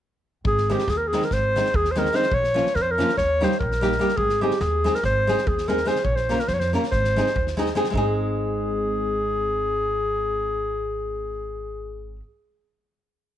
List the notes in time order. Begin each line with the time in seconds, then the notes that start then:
0.45 G#1 G#4, kick
0.58 snare
0.70 D#3 G#3 C4 D#4 G4, snare
0.79 snare
0.88 D#2 G#4, snare
0.97 A#4
1.08 G#4
1.12 D#3 G#3 C4 D#4, snare
1.22 A#4, snare
1.31 G#1 C5, kick, snare
1.56 D#3 G#3 C4 D#4, snare
1.66 snare
1.74 D#2 G#4, kick
1.85 snare
1.92 D#3 C5
1.96 G#3 C4 D#4 A#4, snare
2.05 snare
2.13 D#3 G#3 C4 D#4 C5, snare
2.23 snare
2.32 A#1 C#5, kick
2.44 snare
2.54 F3 A#3 C#4 F4, snare
2.66 snare
2.75 F2 A#4, snare
2.82 C5
2.91 A#4
2.98 F3 A#3 C#4 F4, snare
3.09 snare
3.17 D#2 C#5, kick, snare
3.41 G3 A#3 D#4 G4 C5, snare
3.51 snare
3.59 A#1 A#4, kick
3.72 snare
3.81 G3 A#3 D#4 G4, snare
3.92 snare
3.99 G3 A#3 D#4 G4, snare
4.09 snare
4.17 G#1 G#4, kick
4.29 snare
4.41 G#3 C4 D#4 G4 G#4
4.51 snare
4.60 D#2 G#4, snare
4.84 G#3 C4 D#4 G#4, snare
4.95 A#4, snare
5.03 G#1 C5, kick, snare
5.27 G#3 C4 D#4 G#4, snare
5.38 snare
5.47 D#2 G#4, kick
5.58 snare
5.68 G#3 C4 D#4 G#4 A#4, snare
5.77 snare
5.85 G#3 C4 D#4 G#4 C5, snare
5.96 snare
6.04 A#1 C#5, kick
6.16 C5, snare
6.29 A#3 C#4 F4 A#4, snare
6.39 A#4, snare
6.48 F2 C5, snare
6.54 C#5
6.60 C5, snare
6.73 A#3 C#4 F4 A#4, snare
6.83 snare
6.91 G#1 C5, kick, snare
7.04 snare
7.16 G#3 C4 D#4 G#4, snare
7.26 snare
7.36 D#2, kick
7.47 snare
7.57 G#3 C4 D#4 G#4, snare
7.66 snare
7.75 G#3 C4 D#4 G#4, snare
7.84 snare
7.90 G#1 G#3 C4 G#4, kick
7.95 D#4 G#4